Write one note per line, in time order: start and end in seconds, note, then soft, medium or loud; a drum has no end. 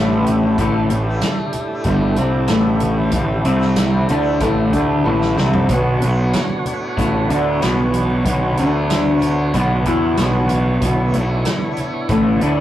0.00 0.54 A1 medium
0.00 0.57 A2 medium
0.00 2.30 A2 medium
0.00 0.44 E3 medium
0.00 0.58 A3 medium
0.00 1.05 A3 medium
0.00 5.67 A3 medium
0.00 12.61 D4 medium
0.00 5.67 E4 medium
0.00 5.67 G4 medium
0.11 high conga medium
0.26 closed hi-hat medium
0.26 low conga medium
0.42 2.90 E3 medium
0.42 high conga medium
0.58 0.88 A1 medium
0.58 0.89 A2 medium
0.58 0.90 A3 medium
0.58 kick loud
0.58 closed hi-hat medium
0.90 1.20 A1 medium
0.90 1.16 A2 medium
0.90 closed hi-hat medium
0.90 high conga medium
1.05 1.68 A3 medium
1.21 snare loud
1.21 closed hi-hat medium
1.38 high conga medium
1.53 closed hi-hat medium
1.53 low conga medium
1.68 3.55 A3 medium
1.84 2.15 G1 loud
1.84 2.16 G2 medium
1.84 2.17 G3 loud
1.84 kick medium
1.84 closed hi-hat medium
2.16 2.48 C2 medium
2.16 2.48 C3 medium
2.16 2.49 C4 medium
2.16 closed hi-hat medium
2.31 4.75 A2 medium
2.48 3.10 A1 medium
2.48 3.12 A2 medium
2.48 3.13 A3 loud
2.48 snare loud
2.48 closed hi-hat medium
2.67 high conga medium
2.80 closed hi-hat medium
2.80 low conga medium
2.91 5.40 E3 medium
2.99 high conga medium
3.12 3.43 A1 medium
3.12 3.39 A2 medium
3.12 kick loud
3.12 closed hi-hat medium
3.45 4.06 C2 medium
3.45 4.08 C3 medium
3.45 4.09 C4 medium
3.45 closed hi-hat medium
3.55 4.16 A3 medium
3.61 snare soft
3.76 snare loud
3.76 closed hi-hat loud
3.94 high conga medium
4.09 4.40 D2 medium
4.09 4.40 D3 medium
4.09 4.41 D4 medium
4.09 closed hi-hat medium
4.09 low conga medium
4.16 6.01 A3 medium
4.40 4.71 A1 loud
4.40 4.72 A2 loud
4.40 4.73 A3 loud
4.40 kick loud
4.40 closed hi-hat medium
4.72 5.03 D2 medium
4.72 7.25 A2 medium
4.72 5.04 D3 medium
4.72 5.04 D4 medium
4.72 kick medium
4.72 closed hi-hat medium
5.04 5.35 A1 loud
5.04 5.36 A2 medium
5.04 5.36 A3 medium
5.04 high tom medium
5.22 snare medium
5.37 5.68 C2 medium
5.37 5.69 C3 medium
5.37 7.89 E3 medium
5.37 5.69 C4 medium
5.37 snare medium
5.37 low conga medium
5.53 floor tom medium
5.53 high conga medium
5.69 6.00 B1 medium
5.69 6.00 B2 medium
5.69 12.61 B3 medium
5.69 6.02 B3 loud
5.69 10.78 F#4 medium
5.69 12.61 C#5 medium
5.69 kick loud
5.69 closed hi-hat medium
6.01 6.32 B1 medium
6.01 6.27 B2 medium
6.01 6.65 A3 medium
6.01 closed hi-hat medium
6.01 high conga medium
6.33 snare loud
6.33 closed hi-hat medium
6.49 high conga medium
6.65 8.50 A3 medium
6.65 closed hi-hat medium
6.65 low conga medium
6.97 7.28 A1 medium
6.97 7.28 A2 medium
6.97 7.28 A3 loud
6.97 kick medium
6.97 closed hi-hat medium
7.26 9.73 A2 medium
7.26 7.61 D3 medium
7.30 7.60 D2 medium
7.30 7.61 D4 loud
7.30 closed hi-hat medium
7.62 8.23 B1 medium
7.62 8.25 B2 medium
7.62 8.25 B3 loud
7.62 snare loud
7.62 closed hi-hat medium
7.78 high conga medium
7.90 10.39 E3 medium
7.94 closed hi-hat medium
8.10 high conga medium
8.25 8.56 B1 medium
8.25 8.52 B2 medium
8.25 kick loud
8.25 closed hi-hat loud
8.50 9.14 A3 medium
8.57 9.51 D2 medium
8.57 9.53 D3 medium
8.57 9.54 D4 medium
8.57 closed hi-hat medium
8.57 high conga medium
8.90 snare loud
8.90 closed hi-hat loud
9.06 high conga medium
9.14 11.02 A3 medium
9.21 closed hi-hat medium
9.21 low conga medium
9.54 9.84 B1 medium
9.54 9.85 B2 loud
9.54 9.86 B3 medium
9.54 kick medium
9.54 closed hi-hat medium
9.73 12.24 A2 medium
9.85 10.16 E2 loud
9.85 10.17 E3 medium
9.85 10.18 E4 loud
9.85 kick medium
9.85 closed hi-hat medium
10.17 10.78 B1 medium
10.17 10.80 B2 medium
10.17 10.81 B3 loud
10.17 snare loud
10.17 closed hi-hat loud
10.34 high conga medium
10.39 12.61 E3 medium
10.49 closed hi-hat medium
10.49 low conga medium
10.66 high conga medium
10.81 11.12 B1 medium
10.81 11.13 B2 medium
10.81 11.13 B3 loud
10.81 12.61 E4 medium
10.81 kick loud
10.81 closed hi-hat loud
11.02 11.64 A3 medium
11.14 11.45 B1 medium
11.14 11.40 B2 medium
11.14 closed hi-hat medium
11.14 high conga medium
11.45 snare loud
11.45 closed hi-hat loud
11.61 12.61 A3 medium
11.61 high conga medium
11.77 closed hi-hat medium
11.77 low conga medium
12.09 12.39 A1 medium
12.09 12.41 A2 medium
12.09 12.41 A3 loud
12.09 kick loud
12.09 closed hi-hat medium
12.24 12.61 A2 medium
12.41 12.61 D2 medium
12.41 12.61 D3 medium
12.41 12.61 D4 loud
12.41 closed hi-hat medium